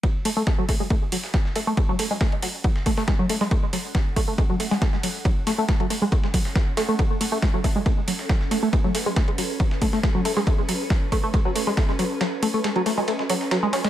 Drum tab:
RD |x-x-x-x-x-x-x-x-|x-x-xx--x-x-x-x-|x-x-x-x-x-x-x-x-|x-x-xx--x-x-x-x-|
HH |--o---o---o---o-|--o---o---o---o-|--o---o---o---o-|--o---o---o---o-|
SD |----o------ooo--|--o-o----o-oo--o|----o------ooo--|--o-o----o-oo-o-|
BD |o---o-o-o---o---|o---o---o-o-o---|o---o-o-o---o---|o---o---o-o-o---|

RD |x-x-x-x-x-x-x-x-|x-x-xx--x-x-x-x-|x-x-x-x-x-x-x-x-|x-x-xx--x-x-x-xx|
HH |--o---o---o---o-|--o---o---o---o-|--o---o---o---o-|--o---o---o---o-|
SD |----o------ooo--|--o-o----o-oo--o|----o------ooo--|o---o----o-oo-oo|
BD |o---o-o-o---o---|o---o---o-o-o---|o---o-o-o---o---|----------------|